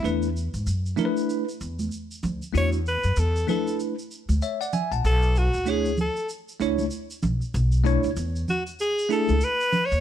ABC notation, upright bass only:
X:1
M:4/4
L:1/16
Q:"Swing 16ths" 1/4=96
K:Bdor
V:1 name="Upright bass" clef=bass
E,,3 G,, F,,2 z4 E,,2 z2 D,, z | E,,3 F,, E,,2 z4 z D,, z3 ^A,,, | B,,,3 D,,4 z3 C,,2 z2 B,,, z | B,,,3 C,, E,,2 z4 z C,, z3 ^D,, |]